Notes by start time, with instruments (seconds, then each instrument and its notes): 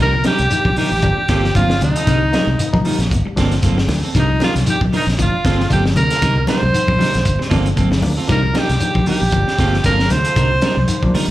0.00 fingered electric bass C2, clean electric guitar D#3 G3 D4 D#4 A#4, trumpet A#4, alto saxophone A#4
0.13 clean electric guitar F3, muted clean electric guitar stroke, low conga
0.24 reed electric piano F3 A#3 D4, clean electric guitar G3 D4 D#4 A#4, trumpet G4, alto saxophone G4, snare, closed hi-hat, high conga, shekere
0.38 fingered electric bass C2, muted clean electric guitar stroke, closed hi-hat
0.50 clean electric guitar D#3, reed electric piano F3 A#3 D4, closed hi-hat, high conga, shekere
0.65 fingered electric bass A#1, clean electric guitar F3, muted clean electric guitar stroke, kick, high conga
0.76 clean electric guitar D#3 G3 D4 D#4 A#4, alto saxophone G4, trumpet G4, muted fingered electric bass stroke, open hi-hat, low conga, shekere
0.91 fingered electric bass A1, muted clean electric guitar stroke
1.02 fingered electric bass G1, clean electric guitar F3, reed electric piano F3 A#3 D4, muted clean electric guitar stroke, kick, closed hi-hat, high conga, shekere
1.18 muted clean electric guitar stroke
1.28 fingered electric bass G1, clean electric guitar A#3 C4 F4 A4, kick, snare, closed hi-hat, shekere
1.43 clean electric guitar F3, snare
1.55 fingered electric bass G1, clean electric guitar D3 A#3 C4 F4, reed electric piano F3 A#3 D4, trumpet F4, alto saxophone F4, kick, closed hi-hat, high conga, shekere
1.70 muted clean electric guitar stroke, snare, high conga
1.81 fingered electric bass D2, clean electric guitar C3, trumpet D#4, alto saxophone D#4, muted clean electric guitar stroke, closed hi-hat, high conga, low conga, shekere
1.96 clean electric guitar C4 F4 A4, closed hi-hat
2.07 fingered electric bass C2, clean electric guitar D3 G3 D4 D#4 A#4, kick, snare, closed hi-hat, high conga, shekere
2.23 muted clean electric guitar stroke
2.33 reed electric piano F3 A#3 D#4, clean electric guitar F3 G3 D#4 A#4, muted clean electric guitar stroke, snare, closed hi-hat, high conga, shekere
2.47 fingered electric bass C2, muted clean electric guitar stroke
2.59 clean electric guitar D#3, closed hi-hat, high conga, shekere
2.73 fingered electric bass A#1, clean electric guitar D3, reed electric piano F3 A#3 D#4, muted clean electric guitar stroke, kick, high conga
2.85 clean electric guitar F3 G3 D#4 A#4, open hi-hat, low conga, shekere
2.99 fingered electric bass A#1, muted clean electric guitar stroke, snare, closed hi-hat
3.10 fingered electric bass G1, muted clean electric guitar stroke, kick, closed hi-hat, shekere
3.25 clean electric guitar G3, muted fingered electric bass stroke, muted clean electric guitar stroke
3.36 fingered electric bass G1, reed electric piano F3 A#3 D4, clean electric guitar A#3 C4 F4 A4, kick, snare, closed hi-hat, shekere
3.51 clean electric guitar F3, snare, closed hi-hat
3.62 fingered electric bass G1, clean electric guitar A#3 C4 F4 A4, kick, snare, closed hi-hat, high conga, shekere
3.76 clean electric guitar D3, muted clean electric guitar stroke, snare
3.88 fingered electric bass D2, reed electric piano F3 A#3 D4, muted clean electric guitar stroke, snare, open hi-hat, high conga, low conga, shekere
4.04 clean electric guitar C4 A4, muted clean electric guitar stroke
4.14 fingered electric bass C2, clean electric guitar D#3 G3 D4 D#4 A#4, reed electric piano F3 A#3 D4, trumpet D#4, kick, closed hi-hat, shekere
4.19 alto saxophone D#4
4.29 clean electric guitar F3, muted clean electric guitar stroke
4.40 reed electric piano F3 A#3 D4, clean electric guitar G3 D4 D#4 A#4, trumpet F4, snare, closed hi-hat, high conga, shekere
4.44 alto saxophone F4
4.55 fingered electric bass C2, muted clean electric guitar stroke, snare, closed hi-hat, high conga
4.66 clean electric guitar D#3, reed electric piano F3 A#3 D4, alto saxophone G4, trumpet G4, closed hi-hat, high conga, shekere
4.81 fingered electric bass A#1, clean electric guitar F3, muted clean electric guitar stroke, kick, high conga
4.92 clean electric guitar D#3 D4 D#4 A#4, trumpet D#4, open hi-hat, low conga, shekere
4.97 alto saxophone D#4
5.07 fingered electric bass A#1, muted clean electric guitar stroke, snare
5.18 fingered electric bass G1, clean electric guitar F3, reed electric piano F3 A#3 D4, trumpet F4, alto saxophone F4, muted clean electric guitar stroke, kick, closed hi-hat, shekere
5.33 muted clean electric guitar stroke
5.45 fingered electric bass G1, clean electric guitar A#3 C4 F4 A4, kick, snare, closed hi-hat, shekere
5.59 clean electric guitar F3, snare
5.70 fingered electric bass G1, clean electric guitar D3 A#3 C4 F4 A4, reed electric piano F3 A#3 D4, trumpet G4, alto saxophone G4, kick, closed hi-hat, high conga, shekere
5.85 muted clean electric guitar stroke, snare
5.96 fingered electric bass D2, clean electric guitar C3, trumpet A#4, alto saxophone A#4, muted clean electric guitar stroke, closed hi-hat, high conga, low conga, shekere
6.10 clean electric guitar C4 F4 A4, snare, closed hi-hat
6.22 fingered electric bass C2, clean electric guitar D3 G3 D#4 A#4, muted clean electric guitar stroke, kick, snare, closed hi-hat, shekere
6.36 muted clean electric guitar stroke, low conga
6.47 clean electric guitar F3 G3 D4 D#4 A#4, reed electric piano F3 A#3 D4, trumpet C5, alto saxophone C5, snare, closed hi-hat, high conga, shekere
6.62 fingered electric bass C2, muted clean electric guitar stroke, high conga
6.74 clean electric guitar D#3, muted fingered electric bass stroke, closed hi-hat, high conga, shekere
6.87 fingered electric bass A#1, reed electric piano F3 A#3 D4, muted clean electric guitar stroke, kick, high conga
6.99 clean electric guitar F3 G3 D4 D#4 A#4, snare, open hi-hat, low conga, shekere
7.14 fingered electric bass A#1, muted clean electric guitar stroke, snare, closed hi-hat
7.25 fingered electric bass G1, muted clean electric guitar stroke, kick, closed hi-hat, shekere
7.39 clean electric guitar G3, muted clean electric guitar stroke, muted fingered electric bass stroke, snare
7.50 fingered electric bass G1, reed electric piano F3 A#3 D4, clean electric guitar A#3 C4 F4 A4, kick, snare, closed hi-hat, shekere
7.65 clean electric guitar F3, closed hi-hat
7.76 fingered electric bass G1, clean electric guitar A#3 C4 A4, kick, closed hi-hat, high conga, shekere
7.91 clean electric guitar D3, muted clean electric guitar stroke, snare, high conga
8.02 fingered electric bass D2, reed electric piano F3 A#3 D4, muted clean electric guitar stroke, open hi-hat, high conga, low conga, shekere
8.17 clean electric guitar C4 F4 A4
8.27 fingered electric bass C2, clean electric guitar D#3 G3 D4 D#4 A#4, reed electric piano F3 A#3 D4, kick, snare, closed hi-hat, high conga, shekere
8.32 alto saxophone A#4, trumpet A#4
8.43 clean electric guitar F3, muted clean electric guitar stroke
8.53 reed electric piano F3 A#3 D4, clean electric guitar D4 D#4 A#4, muted clean electric guitar stroke, snare, closed hi-hat, high conga, shekere
8.58 trumpet G4, alto saxophone G4
8.69 fingered electric bass C2, snare, closed hi-hat
8.80 clean electric guitar D#3, reed electric piano F3 A#3 D4, muted fingered electric bass stroke, closed hi-hat, high conga, shekere
8.94 fingered electric bass A#1, clean electric guitar F3, muted clean electric guitar stroke, kick, high conga
9.06 clean electric guitar D#3 G3 D4 D#4 A#4, trumpet G4, alto saxophone G4, open hi-hat, low conga, shekere
9.22 fingered electric bass A#1, muted clean electric guitar stroke
9.32 fingered electric bass G1, reed electric piano F3 A#3 D4, clean electric guitar F3, muted clean electric guitar stroke, kick, closed hi-hat, shekere
9.47 muted clean electric guitar stroke, muted fingered electric bass stroke, snare
9.58 fingered electric bass G1, clean electric guitar A#3 C4 F4 A4, kick, snare, closed hi-hat, shekere
9.73 clean electric guitar F3, snare
9.84 fingered electric bass G1, clean electric guitar D3 A#3 C4 F4 A4, reed electric piano F3 A#3 D4, alto saxophone A#4, trumpet A#4, kick, snare, closed hi-hat, high conga, shekere
9.99 muted clean electric guitar stroke, snare, high conga
10.10 fingered electric bass D2, clean electric guitar C3, alto saxophone C5, trumpet C5, muted clean electric guitar stroke, snare, closed hi-hat, high conga, low conga, shekere
10.25 clean electric guitar F4 A4, closed hi-hat
10.36 fingered electric bass C2, clean electric guitar D3 G3 D4 D#4 A#4, kick, closed hi-hat, shekere
10.51 muted clean electric guitar stroke, low conga
10.61 clean electric guitar F3 G3 D4 D#4 A#4, reed electric piano F3 A#3 D4, snare, closed hi-hat, high conga, shekere
10.77 fingered electric bass C2, muted clean electric guitar stroke, high conga
10.88 clean electric guitar D#3, closed hi-hat, high conga, shekere
11.02 fingered electric bass A#1, clean electric guitar D3, reed electric piano F3 A#3 D4, muted clean electric guitar stroke, kick, high conga
11.14 clean electric guitar F3 G3 D4 D#4 A#4, muted fingered electric bass stroke, open hi-hat, low conga, shekere